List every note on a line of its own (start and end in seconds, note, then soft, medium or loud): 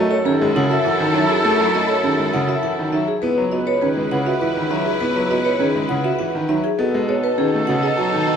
0.00 3.07 F#2 medium
0.00 0.15 A3 medium
0.00 3.04 E4 medium
0.00 0.15 F#4 loud
0.00 3.04 A4 loud
0.00 3.04 A4 medium
0.00 0.15 D#5 loud
0.11 0.30 A4 medium
0.11 0.30 C#5 loud
0.25 0.45 D#3 loud
0.25 0.45 C#4 loud
0.25 0.45 G#4 loud
0.41 0.60 G#3 loud
0.55 0.75 C#3 loud
0.55 0.74 E4 medium
0.55 0.75 F#5 loud
0.70 0.89 F#4 loud
0.70 0.90 E5 loud
0.85 1.04 E3 medium
0.85 1.04 E4 medium
0.85 1.04 F#5 medium
1.00 1.19 D#3 loud
1.14 1.34 F#3 medium
1.14 1.34 D#4 loud
1.14 1.34 E5 medium
1.29 1.49 G#4 medium
1.44 1.64 A3 loud
1.44 1.63 E4 medium
1.44 1.64 A4 loud
1.60 1.79 F#3 medium
1.74 1.94 A3 medium
1.74 1.93 F#4 medium
1.74 1.93 D#5 medium
1.88 2.08 A4 medium
1.88 2.08 C#5 medium
2.04 2.23 D#3 medium
2.04 2.23 C#4 loud
2.04 2.23 G#4 medium
2.19 2.38 G#3 medium
2.33 2.53 C#3 loud
2.33 2.53 E4 medium
2.33 2.53 F#5 medium
2.48 2.67 F#4 medium
2.48 2.68 E5 medium
2.63 2.83 E3 medium
2.63 2.82 E4 medium
2.63 2.82 F#5 medium
2.79 2.97 D#3 medium
2.92 3.12 F#3 medium
2.92 3.12 D#4 medium
2.92 3.12 E5 medium
3.08 3.27 G#4 medium
3.22 6.63 C#2 medium
3.22 3.42 B3 loud
3.22 6.60 E4 medium
3.22 3.42 E4 medium
3.22 3.41 B4 medium
3.22 6.60 B4 medium
3.38 3.57 F#3 medium
3.52 3.72 B3 medium
3.52 3.71 F#4 medium
3.52 3.71 D#5 medium
3.67 3.86 B4 medium
3.67 3.86 C#5 loud
3.81 4.01 D#3 medium
3.81 4.01 C#4 medium
3.81 4.01 G#4 medium
3.96 4.16 G#3 medium
4.11 4.31 C#3 medium
4.11 4.31 E4 medium
4.11 4.31 F#5 loud
4.26 4.46 F#4 medium
4.26 4.46 E5 medium
4.41 4.61 E3 medium
4.41 4.61 E4 medium
4.41 4.61 F#5 medium
4.56 4.75 D#3 medium
4.71 4.90 F#3 medium
4.71 4.90 D#4 medium
4.71 4.90 E5 medium
4.86 5.05 G#4 medium
5.01 5.20 B3 medium
5.01 5.20 E4 medium
5.01 5.20 B4 loud
5.16 5.35 F#3 medium
5.30 5.50 B3 medium
5.30 5.50 F#4 medium
5.30 5.50 D#5 medium
5.45 5.65 B4 medium
5.45 5.64 C#5 loud
5.60 5.79 D#3 medium
5.60 5.79 C#4 loud
5.60 5.79 G#4 medium
5.75 5.94 G#3 medium
5.89 6.09 C#3 loud
5.89 6.09 E4 medium
5.89 6.09 F#5 loud
6.04 6.24 F#4 loud
6.04 6.24 E5 medium
6.19 6.39 E3 medium
6.19 6.39 E4 medium
6.19 6.38 F#5 medium
6.35 6.54 D#3 loud
6.49 6.69 F#3 medium
6.49 6.68 D#4 medium
6.49 6.68 E5 medium
6.64 6.83 G#4 medium
6.79 8.37 B2 medium
6.79 6.98 B3 loud
6.79 8.37 D#4 medium
6.79 6.98 F#4 medium
6.79 6.98 A4 loud
6.79 8.37 A4 medium
6.94 7.13 G#3 medium
7.09 7.28 B3 medium
7.09 7.28 G#4 medium
7.09 7.28 C#5 medium
7.23 7.43 B4 medium
7.23 7.43 B4 loud
7.38 7.58 D#3 medium
7.38 7.57 C#4 loud
7.38 7.57 G#4 medium
7.54 7.73 A3 medium
7.67 7.88 C#3 loud
7.67 7.87 F#4 medium
7.67 7.87 F#5 loud
7.83 8.02 G#4 loud
7.83 8.02 D#5 medium
7.98 8.17 F#3 medium
7.98 8.17 F#4 medium
7.98 8.17 F#5 medium
8.14 8.32 D#3 loud
8.27 8.37 D#4 medium
8.27 8.37 D#5 medium